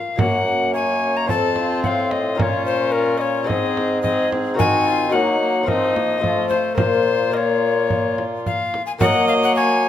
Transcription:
Already playing: A#4 F5
0.16 F#2 A#3 C#4 F#4 A#4 F#5, frame drum
0.20 A#4
0.46 A#3
0.74 C#5 G#5
1.17 A#5
1.26 F2 C4 F4 A4 C5 A5, frame drum
1.56 F4, frame drum
1.84 A2 F5 F#5, frame drum
2.11 D#5, frame drum
2.35 A#2 C#4 F4 A#4 D#5
2.39 F4 C#5, frame drum
2.66 C5
2.92 F4 A#4
3.18 C#5 D#5
3.44 G#2 C4 G#4 C5 D#5
3.49 G#2 C4 G#4, frame drum
3.77 frame drum
4.02 C4 G#4 D#5, frame drum
4.31 C4, frame drum
4.54 D#3 D#4 F#4 A#4
4.58 D#3 F#4 G#5, frame drum
4.87 F4
5.09 F#3 D#4 F#4 A#4 F#5
5.14 F#3 A#3 D#4
5.41 A#3
5.63 F3 C4 F4 A#4
5.68 F3 C4 D#4 D#5, frame drum
5.95 A#3, frame drum
6.18 F3 C4 F4 A4
6.22 F3 A3 F4, frame drum
6.49 C5, frame drum
6.75 A#2 A#3 F4 A#4 C5, frame drum
6.79 A#2
7.30 A#3 F4 A#4 D#5
7.37 C#5
7.90 frame drum
8.18 frame drum
8.46 F5, frame drum
8.74 frame drum
8.86 G#5
8.98 F#3 A#3 F#4 A#4 D#5 F#5, frame drum
9.28 F5
9.43 F#5
9.56 C#5 G#5

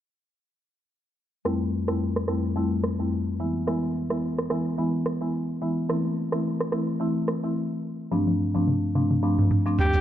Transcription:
1.45 F2 G3 A3 C4 E4, cross-stick
1.88 F2 G3 A3 C4 E4, cross-stick
2.16 cross-stick
2.28 F2 G3 A3 C4 E4, cross-stick
2.56 F2 G3 A3 C4 E4
2.84 cross-stick
2.99 F2 G3 A3 C4 E4
3.40 E3 G#3 B3 E4
3.67 E3 G#3 B3 E4, cross-stick, shaker
3.82 shaker
3.95 shaker
4.10 E3 G#3 B3 E4, cross-stick, shaker
4.23 shaker
4.38 cross-stick, shaker
4.50 E3 G#3 B3 E4, cross-stick
4.66 shaker
4.78 E3 G#3 B3 E4, shaker
4.93 shaker
5.06 cross-stick
5.21 E3 G#3 B3 E4, shaker
5.34 shaker
5.49 shaker
5.62 E3 G#3 B3 E4
5.78 shaker
5.89 E3 A3 C4 E4, cross-stick, shaker
6.04 shaker
6.17 shaker
6.32 E3 A3 C4 E4, cross-stick, shaker
6.45 shaker
6.60 cross-stick, shaker
6.72 E3 A3 C4 E4, cross-stick
6.88 shaker
7.00 E3 A3 C4 E4, shaker
7.15 shaker
7.28 cross-stick
7.44 E3 A3 C4 E4, shaker
7.56 shaker
7.71 shaker
8.00 shaker
8.12 G2 F3 A3 C4 D4, high tom, shaker
8.27 high tom, shaker
8.39 shaker
8.55 G2 F3 A3 C4 D4, high tom, shaker
8.67 mid tom, shaker
8.83 shaker
8.95 G2 F3 A3 C4 D4, mid tom, shaker
9.10 mid tom, shaker
9.23 G2 F3 A3 C4 D4, shaker
9.38 mid tom, shaker
9.51 mid tom, shaker
9.66 G2 F3 A3 C4 D4, shaker
9.79 G4, floor tom, shaker
9.93 floor tom, shaker

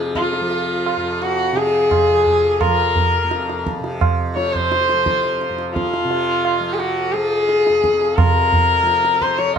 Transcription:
Already playing: F2 C3 F3
0.15 F4, tabla ke
0.33 tabla te
0.41 F3
0.51 tabla tin
0.86 tabla na
0.97 F2
1.22 F#4, tabla te
1.53 C3 G#4
1.57 tabla te
1.91 tabla na, tabla ge
2.10 F3
2.26 tabla ge
2.60 A#4, tabla na, tabla ge
2.67 F3
2.96 tabla ge
3.24 F2
3.31 tabla te
3.49 tabla te
3.67 tabla ke
3.80 C3, tabla te
4.01 tabla na, tabla ge
4.35 F3 C#5, tabla te
4.54 C5, tabla ge
4.72 tabla te
4.89 F3, tabla te
5.06 tabla ke
5.23 tabla te
5.41 tabla te
5.50 F2
5.58 tabla te
5.73 F4, tabla ke
5.94 tabla te
6.05 C3
6.11 tabla tin
6.45 tabla na
6.60 F3
6.73 G#4
6.78 F#4, tabla te
7.13 F3 G#4, tabla te
7.49 tabla te
7.67 F2, tabla te
7.84 tabla ke
8.01 tabla te
8.16 A#4, tabla na, tabla ge
8.25 C3
8.53 tabla ge
8.83 F3
8.87 tabla te
9.04 tabla te
9.22 C5, tabla ke
9.38 F3 C#5, tabla te

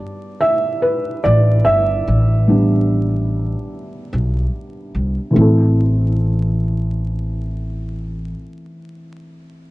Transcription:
Already playing: G3 B3 D4 B4 D5
0.41 E5
0.82 B4
1.24 A1 D5
1.65 G1 E5
2.08 A1
2.47 G3 B3 D4
4.13 B1
4.95 C2
5.31 E3 A3
5.36 A1 C4 E4
5.41 A4

